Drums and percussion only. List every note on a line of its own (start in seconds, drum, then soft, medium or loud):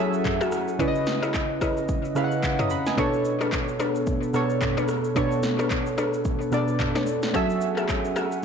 0.13 shaker soft
0.25 kick medium
0.25 clap loud
0.25 mid tom medium
0.25 shaker medium
0.41 cross-stick medium
0.41 shaker medium
0.52 cross-stick loud
0.52 shaker loud
0.68 shaker soft
0.80 kick loud
0.80 shaker medium
0.95 shaker soft
1.07 snare medium
1.07 shaker medium
1.23 cross-stick medium
1.23 shaker medium
1.34 kick loud
1.34 clap medium
1.34 shaker medium
1.61 kick medium
1.61 cross-stick loud
1.61 shaker medium
1.77 shaker medium
1.89 kick loud
1.89 shaker medium
2.05 shaker soft
2.16 cross-stick medium
2.16 shaker medium
2.31 shaker soft
2.43 kick medium
2.43 clap medium
2.43 shaker medium
2.59 cross-stick medium
2.59 mid tom loud
2.59 shaker medium
2.70 shaker loud
2.86 snare medium
2.86 shaker medium
2.98 kick loud
2.98 shaker medium
3.13 shaker soft
3.25 shaker medium
3.41 cross-stick medium
3.41 shaker medium
3.52 kick medium
3.52 clap medium
3.52 shaker medium
3.68 shaker soft
3.80 cross-stick loud
3.80 shaker loud
3.95 shaker medium
4.07 kick loud
4.07 shaker medium
4.23 shaker soft
4.34 cross-stick medium
4.34 shaker medium
4.50 shaker soft
4.61 kick medium
4.61 clap loud
4.61 mid tom medium
4.61 shaker medium
4.77 cross-stick medium
4.77 shaker medium
4.88 cross-stick loud
4.88 shaker loud
5.04 shaker medium
5.16 kick loud
5.16 shaker medium
5.32 shaker soft
5.43 snare medium
5.43 shaker medium
5.59 cross-stick medium
5.59 shaker soft
5.71 kick medium
5.71 clap medium
5.71 shaker medium
5.86 shaker soft
5.98 cross-stick loud
5.98 shaker medium
6.14 shaker medium
6.25 kick loud
6.25 shaker medium
6.41 shaker soft
6.52 cross-stick medium
6.52 shaker medium
6.68 shaker soft
6.79 kick medium
6.79 clap loud
6.79 mid tom medium
6.79 shaker medium
6.96 snare medium
6.96 shaker medium
7.07 shaker loud
7.23 snare medium
7.23 shaker medium
7.34 kick loud
7.34 shaker medium
7.50 shaker soft
7.61 shaker medium
7.77 cross-stick medium
7.77 shaker medium
7.89 kick loud
7.89 clap medium
7.89 shaker medium
8.05 shaker soft
8.16 cross-stick loud
8.16 shaker medium
8.32 shaker medium